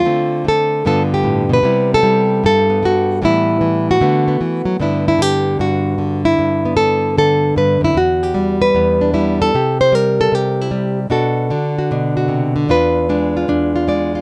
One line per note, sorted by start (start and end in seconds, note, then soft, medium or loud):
0.00 0.46 F4 medium
0.05 0.84 D3 medium
0.05 0.43 A3 soft
0.05 0.83 C4 soft
0.45 0.83 A3 medium
0.45 0.86 A4 medium
0.85 1.62 G2 medium
0.85 1.64 D3 soft
0.85 1.64 B3 soft
0.85 1.63 F4 soft
0.85 1.02 A4 medium
1.14 1.52 G4 medium
1.23 1.49 A2 medium
1.49 1.63 B2 medium
1.53 1.91 B4 loud
1.63 2.42 C3 medium
1.63 2.02 G3 soft
1.63 2.69 B3 soft
1.63 2.04 E4 soft
1.94 2.45 A4 loud
2.03 2.81 G3 medium
2.03 2.85 E4 soft
2.44 3.21 G2 medium
2.44 3.23 A4 medium
2.70 3.23 B3 soft
2.83 3.20 G3 medium
2.83 3.23 F#4 medium
3.22 4.01 A2 medium
3.22 3.60 E3 soft
3.22 4.01 G3 soft
3.22 4.02 B3 soft
3.22 3.89 E4 medium
3.61 4.01 E3 medium
3.91 4.82 F#4 medium
4.01 4.40 D3 medium
4.01 4.81 A3 soft
4.01 4.27 B3 soft
4.28 4.81 B3 soft
4.41 4.65 E3 medium
4.65 4.79 F#3 medium
4.80 5.59 G2 medium
4.80 5.17 D3 soft
4.80 6.65 B3 soft
4.80 7.88 D4 soft
4.80 5.08 E4 soft
5.08 5.22 E4 medium
5.19 5.97 D3 medium
5.19 5.60 G4 medium
5.59 6.36 G2 medium
5.59 6.25 F#4 medium
5.98 6.77 D3 medium
6.25 6.76 E4 medium
6.39 7.55 G2 medium
6.65 7.95 B3 soft
6.77 7.16 D3 medium
6.77 7.16 A4 medium
7.18 7.94 D3 medium
7.18 7.57 A4 medium
7.56 7.81 G2 medium
7.56 7.83 B4 medium
7.81 7.94 F#2 medium
7.81 7.97 E4 medium
7.94 8.73 E2 medium
7.94 8.62 F#4 medium
8.23 8.61 G4 medium
8.34 9.13 G3 medium
8.62 9.14 B4 loud
8.75 9.53 E2 medium
8.75 9.52 B3 soft
9.01 9.55 D4 soft
9.14 9.52 G3 medium
9.14 9.40 E4 soft
9.42 9.80 A4 medium
9.54 10.31 C3 medium
9.54 10.20 G4 soft
9.81 9.95 C5 loud
9.92 10.70 G3 medium
9.92 10.61 A#4 loud
10.21 10.35 A4 medium
10.32 11.09 C3 medium
10.32 10.99 G4 loud
10.61 11.12 E4 medium
10.71 11.10 G3 medium
11.10 11.50 B2 medium
11.10 11.51 D4 medium
11.10 11.76 F#4 medium
11.10 12.67 A4 medium
11.50 12.55 D3 medium
11.50 11.91 D4 medium
11.79 12.16 F#4 medium
11.91 12.68 B2 medium
11.91 12.68 D4 medium
12.17 12.67 F#4 medium
12.28 12.55 C3 medium
12.56 12.69 D3 medium
12.69 13.47 E2 medium
12.69 13.08 D4 medium
12.69 13.35 F4 medium
12.69 13.88 B4 medium
13.09 13.86 G#3 medium
13.09 13.48 D4 medium
13.37 13.75 F4 medium
13.48 14.21 E2 medium
13.48 14.21 D4 medium
13.76 14.14 F4 medium
13.87 14.21 G#3 medium
13.87 14.21 D5 medium
14.15 14.21 F4 medium